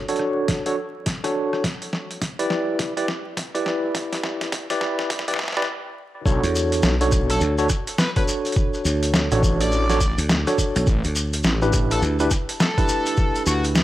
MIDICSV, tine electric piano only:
0, 0, Header, 1, 2, 480
1, 0, Start_track
1, 0, Key_signature, 2, "minor"
1, 0, Tempo, 576923
1, 1364, Time_signature, 4, 2, 24, 8
1, 11512, End_track
2, 0, Start_track
2, 0, Title_t, "Tine electric piano"
2, 0, Program_c, 0, 4
2, 72, Note_on_c, 0, 62, 98
2, 72, Note_on_c, 0, 66, 88
2, 72, Note_on_c, 0, 69, 91
2, 72, Note_on_c, 0, 73, 104
2, 516, Note_off_c, 0, 62, 0
2, 516, Note_off_c, 0, 66, 0
2, 516, Note_off_c, 0, 69, 0
2, 516, Note_off_c, 0, 73, 0
2, 549, Note_on_c, 0, 62, 99
2, 551, Note_on_c, 0, 66, 90
2, 551, Note_on_c, 0, 69, 91
2, 551, Note_on_c, 0, 73, 106
2, 623, Note_off_c, 0, 62, 0
2, 623, Note_off_c, 0, 66, 0
2, 623, Note_off_c, 0, 73, 0
2, 624, Note_off_c, 0, 69, 0
2, 1030, Note_on_c, 0, 69, 84
2, 1031, Note_on_c, 0, 62, 93
2, 1031, Note_on_c, 0, 66, 84
2, 1031, Note_on_c, 0, 73, 98
2, 1352, Note_off_c, 0, 62, 0
2, 1352, Note_off_c, 0, 66, 0
2, 1352, Note_off_c, 0, 69, 0
2, 1352, Note_off_c, 0, 73, 0
2, 1990, Note_on_c, 0, 67, 86
2, 1991, Note_on_c, 0, 64, 96
2, 1991, Note_on_c, 0, 71, 90
2, 1991, Note_on_c, 0, 74, 110
2, 2436, Note_off_c, 0, 64, 0
2, 2436, Note_off_c, 0, 67, 0
2, 2436, Note_off_c, 0, 71, 0
2, 2436, Note_off_c, 0, 74, 0
2, 2469, Note_on_c, 0, 67, 91
2, 2469, Note_on_c, 0, 71, 88
2, 2470, Note_on_c, 0, 64, 97
2, 2470, Note_on_c, 0, 74, 108
2, 2543, Note_off_c, 0, 64, 0
2, 2543, Note_off_c, 0, 67, 0
2, 2543, Note_off_c, 0, 71, 0
2, 2543, Note_off_c, 0, 74, 0
2, 2950, Note_on_c, 0, 64, 94
2, 2950, Note_on_c, 0, 67, 81
2, 2950, Note_on_c, 0, 71, 84
2, 2950, Note_on_c, 0, 74, 103
2, 3875, Note_off_c, 0, 64, 0
2, 3875, Note_off_c, 0, 67, 0
2, 3875, Note_off_c, 0, 71, 0
2, 3875, Note_off_c, 0, 74, 0
2, 3912, Note_on_c, 0, 67, 88
2, 3912, Note_on_c, 0, 71, 91
2, 3912, Note_on_c, 0, 74, 110
2, 3913, Note_on_c, 0, 64, 98
2, 4356, Note_off_c, 0, 67, 0
2, 4356, Note_off_c, 0, 74, 0
2, 4357, Note_off_c, 0, 64, 0
2, 4357, Note_off_c, 0, 71, 0
2, 4393, Note_on_c, 0, 64, 98
2, 4393, Note_on_c, 0, 67, 89
2, 4393, Note_on_c, 0, 71, 92
2, 4393, Note_on_c, 0, 74, 108
2, 4464, Note_off_c, 0, 64, 0
2, 4465, Note_off_c, 0, 67, 0
2, 4465, Note_off_c, 0, 71, 0
2, 4465, Note_off_c, 0, 74, 0
2, 4632, Note_on_c, 0, 74, 113
2, 4633, Note_on_c, 0, 64, 98
2, 4633, Note_on_c, 0, 67, 95
2, 4633, Note_on_c, 0, 71, 94
2, 4704, Note_off_c, 0, 74, 0
2, 4705, Note_off_c, 0, 64, 0
2, 4705, Note_off_c, 0, 67, 0
2, 4705, Note_off_c, 0, 71, 0
2, 5205, Note_on_c, 0, 62, 101
2, 5205, Note_on_c, 0, 69, 92
2, 5205, Note_on_c, 0, 73, 115
2, 5206, Note_on_c, 0, 66, 94
2, 5773, Note_off_c, 0, 62, 0
2, 5773, Note_off_c, 0, 66, 0
2, 5773, Note_off_c, 0, 69, 0
2, 5773, Note_off_c, 0, 73, 0
2, 5833, Note_on_c, 0, 62, 99
2, 5833, Note_on_c, 0, 66, 87
2, 5833, Note_on_c, 0, 69, 89
2, 5833, Note_on_c, 0, 73, 106
2, 6277, Note_off_c, 0, 62, 0
2, 6277, Note_off_c, 0, 66, 0
2, 6277, Note_off_c, 0, 69, 0
2, 6277, Note_off_c, 0, 73, 0
2, 6311, Note_on_c, 0, 69, 89
2, 6312, Note_on_c, 0, 62, 99
2, 6312, Note_on_c, 0, 73, 109
2, 6313, Note_on_c, 0, 66, 91
2, 6384, Note_off_c, 0, 62, 0
2, 6384, Note_off_c, 0, 66, 0
2, 6384, Note_off_c, 0, 69, 0
2, 6384, Note_off_c, 0, 73, 0
2, 6792, Note_on_c, 0, 62, 93
2, 6793, Note_on_c, 0, 66, 82
2, 6793, Note_on_c, 0, 69, 84
2, 6794, Note_on_c, 0, 73, 103
2, 7716, Note_off_c, 0, 62, 0
2, 7717, Note_off_c, 0, 66, 0
2, 7717, Note_off_c, 0, 69, 0
2, 7717, Note_off_c, 0, 73, 0
2, 7752, Note_on_c, 0, 62, 97
2, 7752, Note_on_c, 0, 69, 87
2, 7753, Note_on_c, 0, 66, 90
2, 7753, Note_on_c, 0, 73, 109
2, 8196, Note_off_c, 0, 62, 0
2, 8196, Note_off_c, 0, 69, 0
2, 8197, Note_off_c, 0, 66, 0
2, 8197, Note_off_c, 0, 73, 0
2, 8233, Note_on_c, 0, 62, 98
2, 8234, Note_on_c, 0, 66, 88
2, 8235, Note_on_c, 0, 69, 89
2, 8235, Note_on_c, 0, 73, 112
2, 8305, Note_off_c, 0, 62, 0
2, 8305, Note_off_c, 0, 66, 0
2, 8305, Note_off_c, 0, 69, 0
2, 8306, Note_off_c, 0, 73, 0
2, 8713, Note_on_c, 0, 62, 93
2, 8713, Note_on_c, 0, 73, 102
2, 8714, Note_on_c, 0, 66, 85
2, 8714, Note_on_c, 0, 69, 87
2, 9033, Note_off_c, 0, 62, 0
2, 9033, Note_off_c, 0, 73, 0
2, 9034, Note_off_c, 0, 66, 0
2, 9034, Note_off_c, 0, 69, 0
2, 9670, Note_on_c, 0, 62, 98
2, 9670, Note_on_c, 0, 67, 89
2, 9670, Note_on_c, 0, 71, 111
2, 9671, Note_on_c, 0, 64, 88
2, 10115, Note_off_c, 0, 62, 0
2, 10115, Note_off_c, 0, 67, 0
2, 10115, Note_off_c, 0, 71, 0
2, 10116, Note_off_c, 0, 64, 0
2, 10151, Note_on_c, 0, 62, 99
2, 10151, Note_on_c, 0, 64, 90
2, 10151, Note_on_c, 0, 67, 90
2, 10151, Note_on_c, 0, 71, 107
2, 10223, Note_off_c, 0, 64, 0
2, 10223, Note_off_c, 0, 71, 0
2, 10224, Note_off_c, 0, 62, 0
2, 10224, Note_off_c, 0, 67, 0
2, 10629, Note_on_c, 0, 67, 86
2, 10631, Note_on_c, 0, 62, 94
2, 10631, Note_on_c, 0, 64, 85
2, 10631, Note_on_c, 0, 71, 103
2, 11512, Note_off_c, 0, 62, 0
2, 11512, Note_off_c, 0, 64, 0
2, 11512, Note_off_c, 0, 67, 0
2, 11512, Note_off_c, 0, 71, 0
2, 11512, End_track
0, 0, End_of_file